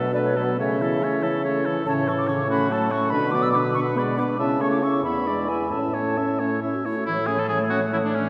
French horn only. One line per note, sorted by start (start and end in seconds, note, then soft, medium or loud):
0.00 0.13 F#3 soft
0.14 0.38 A3 soft
0.36 0.58 F#3 soft
0.58 0.82 A3 soft
0.80 1.03 E3 soft
1.01 1.24 A3 soft
1.23 1.44 E3 soft
1.44 1.67 A3 soft
1.66 1.85 E3 soft
1.86 2.09 C#3 soft
2.07 2.30 E3 soft
2.28 2.48 C#3 soft
2.48 2.71 A3 soft
2.69 2.93 F#3 soft
2.91 3.11 A3 soft
3.11 3.35 D3 soft
3.33 3.56 F#3 soft
3.55 3.75 D3 soft
3.76 3.99 B3 soft
3.98 4.19 G#3 soft
4.18 4.39 B3 soft
4.39 4.62 C#4 soft
4.60 4.85 A3 soft
4.83 5.04 C#4 soft
5.05 5.28 B3 soft
5.27 5.50 G#3 soft
5.48 5.71 B3 soft
5.72 5.96 C#4 soft
5.95 6.20 A3 soft
6.18 6.43 C#4 soft
6.41 6.62 A3 soft
6.63 6.88 C#4 soft
6.86 7.08 A3 soft
7.08 8.29 A3 soft